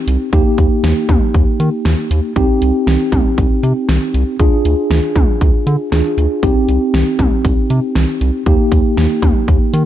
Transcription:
Already playing: C4 D#4 G4
0.07 C2, closed hi-hat
0.33 D#2 A#3 D#4 G4, kick, closed hi-hat
0.58 D#2, kick, closed hi-hat
0.83 D#2, snare, closed hi-hat
1.09 D#2, kick, closed hi-hat, mid tom
1.34 D#2, kick, closed hi-hat
1.60 D#3, closed hi-hat
1.85 D#2, snare, closed hi-hat
2.11 D#2, closed hi-hat
2.36 C2 C4 D#4 G4, kick, closed hi-hat
2.61 C2, closed hi-hat
2.87 C2, snare, closed hi-hat
3.12 C2, kick, closed hi-hat, mid tom
3.38 C2, kick, closed hi-hat
3.63 C3, closed hi-hat
3.89 C2, snare, closed hi-hat
4.14 C2, closed hi-hat
4.39 D2 D4 F4 G#4, kick, closed hi-hat
4.65 D2, closed hi-hat
4.90 D2, snare, closed hi-hat
5.16 D2, kick, closed hi-hat, mid tom
5.41 D2, kick, closed hi-hat
5.67 D3, closed hi-hat
5.92 D2 D4 F4 G#4, snare, closed hi-hat
6.17 D2, closed hi-hat
6.43 C2 C4 D#4 G4, kick, closed hi-hat
6.68 C2, closed hi-hat
6.94 C2, snare, closed hi-hat
7.19 C2, kick, closed hi-hat, mid tom
7.45 C2, kick, closed hi-hat
7.70 C3, closed hi-hat
7.95 C2, snare, closed hi-hat
8.21 C2, closed hi-hat
8.46 D#2 A#3 D#4 G4, kick, closed hi-hat
8.72 D#2, kick, closed hi-hat
8.97 D#2, snare, closed hi-hat
9.22 D#2, kick, closed hi-hat, mid tom
9.48 D#2, kick, closed hi-hat
9.73 D#3, closed hi-hat

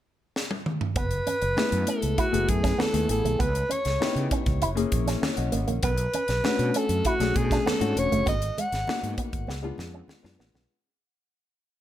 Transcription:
0.36 snare
0.51 high tom
0.66 mid tom
0.81 floor tom
0.96 F#1 B3 B4, kick, closed hi-hat, muted conga
1.11 closed hi-hat
1.27 C#4, closed hi-hat, muted conga
1.42 F#1, muted clean electric guitar stroke, closed hi-hat
1.56 A3 B3 E4 G#4, snare, high conga
1.72 F#2, closed hi-hat
1.87 C#4 A4, closed hi-hat
2.02 C#2, closed hi-hat
2.18 E4 F#4, kick, closed hi-hat, muted conga
2.32 F#1 A3 B3 E4 G#4, muted clean electric guitar stroke, closed hi-hat
2.48 F#2 G#4, kick, closed hi-hat, muted conga, low conga
2.63 C#4, kick, snare, closed hi-hat
2.78 B3 A4, snare, high conga
2.92 D#2 A3 B3 E4 G#4, muted clean electric guitar stroke, closed hi-hat
3.08 A1 A3 B3 E4 A4 G#5, closed hi-hat
3.24 B1 A3, closed hi-hat, high conga
3.39 C#2 B3 B4, kick, closed hi-hat, muted conga
3.55 closed hi-hat
3.69 C#4 C#5, closed hi-hat, muted conga
3.85 C#2, muted clean electric guitar stroke, snare, closed hi-hat
4.00 B3 D#4 E4 G4, muted fretless electric bass stroke, snare, high conga
4.16 C#3, closed hi-hat
4.31 C#4, kick, closed hi-hat
4.46 C#2, kick, closed hi-hat, low conga
4.62 F#1 E4, closed hi-hat, muted conga
4.75 A#3 C#4 E4 G#4, muted clean electric guitar stroke, closed hi-hat
4.92 A#1, kick, closed hi-hat, muted conga, low conga
5.07 C#4, snare, closed hi-hat
5.22 muted clean electric guitar stroke, snare, high conga
5.37 B1 D#5 F#5, closed hi-hat
5.52 G#1 A#3 D#5, closed hi-hat
5.67 A#1 A#3 A#4 C#5, closed hi-hat, high conga
5.83 B1 B3 B4, kick, closed hi-hat, muted conga
5.98 closed hi-hat
6.14 C#4, closed hi-hat, muted conga
6.28 B1, muted clean electric guitar stroke, snare, closed hi-hat
6.43 A3 C#4 D4 F#4, snare, high conga
6.59 B2, closed hi-hat
6.74 C#4 A4, closed hi-hat
6.89 F#2, closed hi-hat
7.05 E4 F#4, kick, closed hi-hat, muted conga
7.20 B1 A3 C#4 D4 G#4, muted clean electric guitar stroke, snare, closed hi-hat
7.34 B2 G#4, kick, closed hi-hat, muted conga, low conga
7.51 D4, kick, snare, closed hi-hat
7.66 B3 A4, snare, high conga
7.80 G#2 A3 C#4 D4 F#4, muted clean electric guitar stroke, closed hi-hat
7.96 E1 A3 C#4 D4 F#4 C#5, closed hi-hat
8.12 F#1 A3, closed hi-hat, high conga
8.26 G#1 B3 D#5, kick, closed hi-hat, muted conga
8.42 closed hi-hat
8.58 G#3 F#5, closed hi-hat, muted conga
8.72 G#1, muted clean electric guitar stroke, snare, closed hi-hat
8.86 A#3 B3 D#4 F#4, muted fretless electric bass stroke, snare, high conga
9.03 G#2, closed hi-hat
9.18 B3, kick, closed hi-hat
9.32 G#1, kick, closed hi-hat, low conga
9.47 C#2 B3, snare, muted conga
9.62 G#3 B3 D4 F4, muted clean electric guitar stroke
9.78 F2, snare, muted conga, low conga
9.94 C#4
10.08 muted clean electric guitar stroke, snare, high conga
10.23 F#2 G#3 B3 D4 F4, snare
10.39 A1 G#3 B3 D4 F4, snare
10.54 B1 B3, snare, high conga

